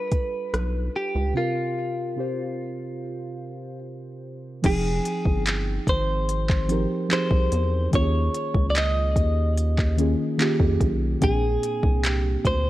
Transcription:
Already playing: synth keys G3 D4 F4 A4 B4, clean electric guitar B4
0.12 kick, closed hi-hat
0.54 analog synth bass B1, cross-stick, closed hi-hat
0.96 clean electric guitar G4
1.15 analog synth bass C#2
1.33 synth keys C3 C4 F4 G4, clean electric guitar F4
1.38 synth keys A#4
2.16 synth keys C3 C4 F4 G4
2.20 synth keys C5
4.62 analog synth bass F1, synth keys F3 C4 D#4 G5, clean electric guitar G#4, kick, closed hi-hat, crash
4.67 synth keys G#4
5.06 closed hi-hat
5.26 analog synth bass G1, kick
5.47 clap, closed hi-hat
5.87 analog synth bass G#1, clean electric guitar C5, kick, closed hi-hat
6.29 closed hi-hat
6.49 kick, clap
6.68 synth keys F3 C4 D#4 G4, closed hi-hat
6.72 synth keys A#4
7.09 synth keys F3 C4 D#4 G4, clap, closed hi-hat
7.13 synth keys G#4, clean electric guitar C5
7.31 analog synth bass C2, kick
7.52 analog synth bass E2, closed hi-hat
7.91 analog synth bass D#2, synth keys D#3 A#3 C#4 F4, kick, closed hi-hat
7.95 synth keys G4, clean electric guitar C#5
8.01 synth keys G#4
8.34 closed hi-hat
8.54 analog synth bass C#2, kick
8.70 clean electric guitar D5
8.76 clean electric guitar D#5, clap, closed hi-hat
9.16 analog synth bass D#2, kick, closed hi-hat
9.58 closed hi-hat
9.78 kick, clap
9.97 synth keys D#3 A#3 C#4 F4 G#4, closed hi-hat
10.37 synth keys D#3 A#3 C#4 F4 G4, clap, closed hi-hat
10.60 analog synth bass F2, kick
10.81 analog synth bass B1, kick, closed hi-hat
11.20 analog synth bass A#1, synth keys A#2 A#3 C4 D4 G5, clean electric guitar G#4, kick, closed hi-hat
11.24 synth keys G#4
11.63 closed hi-hat
11.83 analog synth bass C2, kick
12.04 clean electric guitar G4, clap, closed hi-hat
12.45 analog synth bass D2, clean electric guitar C5, kick, closed hi-hat

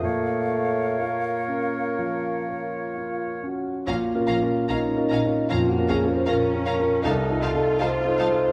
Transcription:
Already playing: french horn section F4, flute F5
0.02 grand piano A#2, bassoon A3, clarinet A#4, french horn section C#5, oboe C#5
0.52 grand piano C#5
0.99 bassoon A#3, grand piano F4
1.48 grand piano C#4
1.99 grand piano F3
2.48 french horn section F4, grand piano C#5
2.96 grand piano F4
3.43 grand piano C#4, french horn section F#4
3.86 double bass section A#1, grand piano A#2, viola section C#4, french horn section F4, violin section F5 A#5
4.15 grand piano C#4 F4 A#4
4.27 double bass section A#1, viola section C#4, violin section F5 A#5
4.42 grand piano C#4 F4 A#4
4.68 double bass section A#1, viola section C#4, grand piano C#4 F4 A#4, french horn section D#4, violin section F5 A#5
4.96 grand piano C#4 F4 A#4
5.10 double bass section A#1, viola section C#4, violin section F5 A#5
5.24 grand piano C#4 F4 A#4
5.50 double bass section A#1, grand piano F2, cello section A#3, viola section C#4, french horn section F4, violin section F5 A#5
5.69 french horn section F#4
5.78 grand piano C#4 F4 A#4
5.88 double bass section A#1, viola section C#4, french horn section G#4, violin section F5 A#5
6.04 grand piano C#4 F4 A#4
6.08 french horn section C5
6.26 double bass section A#1, viola section C#4, cello section C#4, grand piano C#4 F4 A#4, french horn section A#4, violin section F5 A#5
6.54 grand piano C#4 F4 A#4
6.65 double bass section A#1, viola section C#4, violin section F5 A#5
6.79 grand piano C#4 F4 A#4
7.03 grand piano C2, double bass section C2, viola section D#4, cello section D#4, french horn section A4, violin section F5 A5
7.30 grand piano D#4 F4 A4
7.41 double bass section C2, viola section D#4, cello section F4, violin section F5 A5
7.55 grand piano D#4 F4 A4
7.80 double bass section C2, viola section D#4, grand piano D#4 F4 A4, french horn section C5, violin section F5 A5
8.05 grand piano D#4 F4 A4
8.18 double bass section C2, viola section D#4, violin section F5 A5
8.31 grand piano D#4 F4 A4

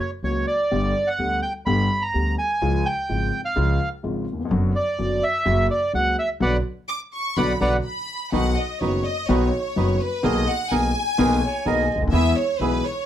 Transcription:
0.00 bandoneon C#5
0.23 upright bass C#2, grand piano C#2 C#3 F#3 A#3 F#4, bandoneon C#5
0.47 bandoneon D5
0.71 grand piano G1 G2 D3 G3 B3 G4, upright bass G1
1.07 bandoneon F#5
1.19 upright bass D2, grand piano D2 D3 G3 B3 G4
1.42 bandoneon G5
1.66 upright bass G1, grand piano G1 G2 D3 G3 B3 G4, bandoneon B5
2.02 bandoneon A#5
2.14 grand piano D2 D3 G3 B3 G4, upright bass D2
2.38 bandoneon G#5
2.61 grand piano C#2 C#3 F3 G#3 F4, upright bass C#2
2.86 bandoneon G5
3.09 upright bass G#1, grand piano G#1 G#2 C#3 F3 G#3 F4
3.45 bandoneon F5
3.56 grand piano C#2 C#3 F3 G#3 F4, upright bass C#2
4.03 grand piano G#1 G#2 C#3 F3 G#3 F4, upright bass G#1
4.33 grand piano D#2
4.39 grand piano E2
4.45 grand piano F2
4.51 upright bass F#1, grand piano F#2 D3 F#3 B3 F#4
4.76 bandoneon D5
4.99 upright bass F#1, grand piano F#2 D3 F#3 B3 F#4
5.23 bandoneon E5
5.45 upright bass F#1, grand piano F#2 C#3 F#3 A#3 F#4
5.71 bandoneon D5
5.93 grand piano C#2 C#3 F#3 A#3 F#4, upright bass C#2, bandoneon F#5
6.19 bandoneon E5
6.40 upright bass B1, grand piano B2 D3 F#3, bandoneon B4 D5 F#5
6.88 violin section D6
7.13 violin section C#6
7.37 upright bass B1, grand piano B2 D3 F#3, bandoneon B4 D5 F#5, violin section B5
7.60 upright bass B1, grand piano B2 D3 F#3, bandoneon B4 D5 F#5, violin section A#5
7.85 violin section B5
8.32 grand piano B1 B2 D#3 F#3 B3 F#4, upright bass B1, bandoneon D#4 F#4 B4, violin section F#5
8.57 violin section D#5
8.80 upright bass F#1, grand piano F#1 F#2 D#3 F#3 B3 F#4, bandoneon D#4 F#4 B4, violin section C#5
9.06 violin section D#5
9.28 grand piano B1 B2 D#3 F#3 B3 F#4, upright bass B1, bandoneon D#4 F#4 B4, violin section C#5
9.76 grand piano F#1 F#2 D#3 F#3 B3 F#4, upright bass F#1, bandoneon D#4 F#4 B4
10.00 violin section B4
10.23 grand piano B1 B2 D#3 A#3 B3 G#4, upright bass B1, bandoneon B3 G#4 A#4, violin section D#5
10.48 violin section F#5
10.70 upright bass B1, grand piano B1 B2 D#3 A#3 B3 G#4, bandoneon B3 G#4 A#4, violin section G#5
11.18 grand piano B1 B2 D#3 A#3 B3 G#4, upright bass B1, bandoneon B3 G#4 A#4, flute B4
11.43 flute C#5
11.65 grand piano B1 B2 D#3 A#3 B3 G#4, upright bass B1, bandoneon B3 G#4 A#4, flute D#5
11.95 grand piano C#2, upright bass C#2
12.01 grand piano D2, upright bass D2
12.07 grand piano D#2, upright bass D#2
12.12 grand piano E2 E3 G#3 B3 G#4, upright bass E2, bandoneon B3 E4 G#4, violin section E5
12.36 violin section C#5
12.60 upright bass B1, grand piano B1 B2 E3 G#3 B3 G#4, bandoneon B3 E4 G#4, violin section B4
12.84 violin section C#5

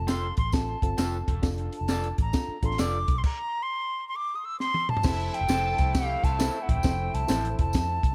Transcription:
Already playing: reed electric piano C4 F4 A4, flute A5
0.00 fingered electric bass F1
0.07 clean electric guitar C4 F4 A4, flute C6, snare, closed hi-hat, tambourine
0.37 fingered electric bass A1, flute C6, kick, closed hi-hat
0.52 reed electric piano C4 F4 A4, flute A5, kick, snare, closed hi-hat, tambourine
0.82 fingered electric bass G1, reed electric piano C4 F4 A4, kick, closed hi-hat
0.98 fingered electric bass F1, clean electric guitar C4 F4 A4, snare, closed hi-hat, tambourine
1.28 fingered electric bass E1, kick, closed hi-hat
1.43 fingered electric bass F1, reed electric piano D4 F4 A4, kick, snare, closed hi-hat, tambourine
1.58 closed hi-hat
1.73 flute A5, closed hi-hat
1.81 fingered electric bass F1
1.88 clean electric guitar F4 A4 D5, snare, closed hi-hat, tambourine
2.04 closed hi-hat
2.18 fingered electric bass A1, flute A#5, kick, closed hi-hat
2.33 reed electric piano D4 F4 A4, kick, snare, closed hi-hat, tambourine
2.48 muted fingered electric bass stroke
2.63 fingered electric bass A1, reed electric piano D4 F4 A4, flute C6, kick, closed hi-hat
2.71 snare
2.78 fingered electric bass F1, clean electric guitar F4 A4 D5, flute D6, snare, closed hi-hat, tambourine
3.08 fingered electric bass B1, kick, closed hi-hat
3.18 flute C6
3.24 flute A#5, kick, crash
3.63 flute C6
4.09 flute C6
4.16 flute D6
4.35 flute D#6
4.45 flute E6
4.60 flute C6, snare
4.74 high tom
4.89 flute A5, mid tom
4.97 floor tom
5.03 fingered electric bass F1, reed electric piano F3 E4 G4 C5, horn section A3 C4 E4, violin section E4 E5, kick, snare, crash, tambourine
5.09 reed electric piano A4
5.20 closed hi-hat
5.34 flute G5, closed hi-hat
5.41 fingered electric bass F1
5.48 fingered electric bass F1, reed electric piano F3 E4 A4 C5, clean electric guitar E4 A4 C5, violin section A4 A5, snare, closed hi-hat, tambourine
5.78 fingered electric bass C2, kick, closed hi-hat
5.94 violin section G4 G5, flute F5, kick, snare, closed hi-hat, tambourine
6.24 fingered electric bass C2, violin section F4 F5, flute A5, kick, closed hi-hat
6.39 clean electric guitar E4 A4 C5, snare, closed hi-hat, tambourine
6.62 flute F#5
6.69 fingered electric bass A1, flute G5, kick, closed hi-hat
6.77 fingered electric bass E1
6.83 fingered electric bass F1, reed electric piano F3 E4 A4 C5, kick, snare, closed hi-hat, tambourine
7.14 fingered electric bass C2, flute A5, closed hi-hat
7.28 fingered electric bass A1, reed electric piano F3 E4 A4 C5, clean electric guitar E4 A4 C5, snare, closed hi-hat, tambourine
7.45 closed hi-hat
7.59 fingered electric bass F1, flute A5, kick, closed hi-hat
7.73 fingered electric bass F2, kick, snare, closed hi-hat, tambourine
8.03 fingered electric bass C2, kick, closed hi-hat

